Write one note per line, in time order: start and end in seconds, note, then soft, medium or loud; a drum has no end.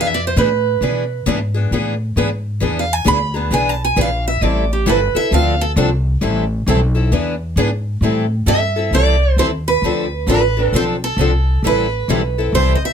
0.00 0.35 F2 medium
0.00 0.12 E3 medium
0.00 0.12 B3 medium
0.00 0.13 D4 medium
0.00 0.13 G#4 medium
0.00 0.13 B4 medium
0.00 0.08 F5 loud
0.08 0.20 E5 medium
0.14 0.25 D5 medium
0.27 0.36 C5 medium
0.36 0.80 A2 medium
0.36 0.48 E3 medium
0.36 0.48 B3 medium
0.36 0.48 D4 medium
0.36 0.48 G#4 loud
0.36 0.48 B4 loud
0.36 1.24 B4 medium
0.81 1.25 B2 medium
0.81 1.03 E3 medium
0.81 1.03 B3 medium
0.81 1.03 D4 medium
0.81 1.04 G#4 medium
0.81 1.04 B4 medium
1.26 1.70 G#2 medium
1.26 1.38 E3 medium
1.26 1.38 B3 loud
1.26 1.38 D4 medium
1.26 1.38 G#4 medium
1.26 1.39 B4 loud
1.54 1.72 B3 soft
1.54 1.71 D4 medium
1.54 1.71 G#4 medium
1.71 2.15 A2 medium
1.71 1.93 E3 medium
1.71 1.93 B3 medium
1.71 1.94 D4 medium
1.71 1.94 G#4 medium
1.71 1.94 B4 medium
2.16 2.60 G#2 medium
2.16 2.28 E3 medium
2.16 2.28 B3 medium
2.16 2.29 D4 medium
2.16 2.28 G#4 medium
2.16 2.29 B4 medium
2.60 3.05 E2 medium
2.60 2.82 E3 medium
2.60 2.83 B3 medium
2.60 2.83 D4 medium
2.60 2.83 G#4 medium
2.60 2.84 B4 medium
2.79 2.93 F5 medium
2.93 3.07 G#5 medium
3.05 3.50 D2 medium
3.05 3.17 E3 medium
3.05 3.18 B3 medium
3.05 3.18 D4 medium
3.05 3.18 G#4 loud
3.05 3.18 B4 loud
3.05 3.36 B5 loud
3.34 3.51 B3 medium
3.34 3.51 D4 medium
3.34 3.51 G#4 medium
3.34 3.52 A5 medium
3.51 3.95 B1 medium
3.51 3.73 E3 medium
3.51 3.73 B3 medium
3.51 3.74 D4 medium
3.51 3.74 G#4 medium
3.51 3.73 B4 medium
3.51 3.69 G#5 medium
3.69 3.83 A5 medium
3.84 3.98 G#5 medium
3.96 4.40 A#1 medium
3.96 4.08 E3 medium
3.96 4.08 B3 medium
3.96 4.09 D4 loud
3.96 4.09 G#4 loud
3.96 4.09 B4 loud
4.01 4.27 F5 medium
4.28 4.44 E5 medium
4.41 4.85 A1 medium
4.41 4.63 E3 medium
4.41 4.64 G3 medium
4.41 4.64 C4 medium
4.41 4.64 E4 medium
4.41 4.64 A4 medium
4.41 4.70 D5 medium
4.73 4.88 G4 medium
4.86 5.13 G1 medium
4.86 4.98 E3 loud
4.86 4.98 G3 medium
4.86 4.98 C4 medium
4.86 4.99 E4 loud
4.86 4.99 A4 loud
4.86 5.16 B4 medium
5.14 5.31 C4 soft
5.14 5.32 E4 medium
5.14 5.31 A4 medium
5.14 5.32 E5 medium
5.14 muted upright bass stroke soft
5.31 5.75 D2 medium
5.31 5.53 D3 medium
5.31 5.54 F3 medium
5.31 5.54 C4 medium
5.31 5.54 D4 medium
5.31 5.54 A4 medium
5.31 5.61 F5 medium
5.61 5.71 A4 medium
5.76 6.20 C2 loud
5.76 5.88 D3 medium
5.76 5.88 F3 medium
5.76 5.89 C4 medium
5.76 5.89 D4 medium
5.76 5.89 A4 loud
6.21 6.65 A1 medium
6.21 6.43 E3 medium
6.21 6.43 G3 medium
6.21 6.43 C4 medium
6.21 6.44 E4 medium
6.21 6.44 A4 medium
6.66 7.11 B1 loud
6.66 6.79 E3 medium
6.66 6.79 G3 medium
6.66 6.79 C4 medium
6.66 6.79 E4 loud
6.66 6.79 A4 medium
6.95 7.12 C4 medium
6.95 7.12 E4 medium
6.95 7.11 A4 medium
7.11 7.55 E2 medium
7.11 7.33 E3 medium
7.11 7.34 B3 medium
7.11 7.34 D4 medium
7.11 7.34 G#4 medium
7.11 7.34 B4 medium
7.56 8.00 G#2 loud
7.56 7.69 E3 medium
7.56 7.69 B3 medium
7.56 7.69 D4 medium
7.56 7.70 G#4 loud
7.56 7.69 B4 loud
8.01 8.45 A2 medium
8.01 8.24 E3 medium
8.01 8.24 G3 medium
8.01 8.25 C4 medium
8.01 8.25 E4 medium
8.01 8.25 A4 medium
8.46 8.90 G2 medium
8.46 8.59 E3 medium
8.46 8.60 G3 medium
8.46 8.60 C4 medium
8.46 8.60 E4 medium
8.46 8.60 A4 medium
8.46 8.94 E5 loud
8.76 8.93 C4 soft
8.76 8.93 E4 soft
8.76 8.92 A4 medium
8.91 9.36 C2 medium
8.91 9.14 E3 medium
8.91 9.15 G3 medium
8.91 9.15 C4 medium
8.91 9.15 A4 medium
8.91 9.39 D5 medium
8.95 9.15 E4 medium
9.36 9.81 D#2 medium
9.36 9.50 E3 medium
9.36 9.50 G3 medium
9.36 9.50 C4 medium
9.36 9.50 E4 medium
9.36 9.50 A4 medium
9.36 9.47 C5 medium
9.68 10.28 B4 medium
9.82 10.26 D2 medium
9.82 10.05 D3 medium
9.82 10.05 F3 medium
9.82 10.05 C4 medium
9.82 10.05 D4 medium
9.86 10.06 A4 medium
10.26 10.71 A1 medium
10.26 10.40 D3 medium
10.26 10.40 F3 medium
10.26 10.41 C4 medium
10.26 10.41 D4 medium
10.26 10.40 A4 medium
10.26 10.75 B4 medium
10.57 10.73 C4 soft
10.57 10.74 D4 medium
10.57 10.73 A4 medium
10.72 11.16 B1 medium
10.72 10.95 D3 medium
10.72 10.95 F3 medium
10.72 10.95 C4 medium
10.72 10.96 D4 medium
10.72 10.96 A4 medium
10.72 10.83 C5 loud
11.04 11.61 A4 medium
11.16 11.61 C2 medium
11.16 11.30 D3 medium
11.21 11.31 F3 medium
11.21 11.31 C4 medium
11.21 11.31 D4 medium
11.21 11.31 A4 medium
11.62 12.07 A1 medium
11.62 11.85 E3 medium
11.62 11.86 G3 medium
11.62 11.86 C4 medium
11.62 11.86 E4 medium
11.62 11.86 A4 medium
11.67 12.52 B4 medium
12.08 12.52 B1 medium
12.08 12.20 E3 medium
12.08 12.20 G3 medium
12.08 12.21 C4 medium
12.08 12.21 E4 loud
12.08 12.21 A4 medium
12.38 12.55 C4 soft
12.38 12.54 E4 medium
12.38 12.54 A4 medium
12.52 12.80 C2 medium
12.52 12.76 E3 medium
12.52 12.76 G3 medium
12.52 12.76 C4 medium
12.52 12.76 E4 medium
12.52 12.73 C5 medium
12.57 12.77 A4 medium
12.75 12.83 D#5 medium
12.81 muted upright bass stroke soft
12.85 12.93 E5 medium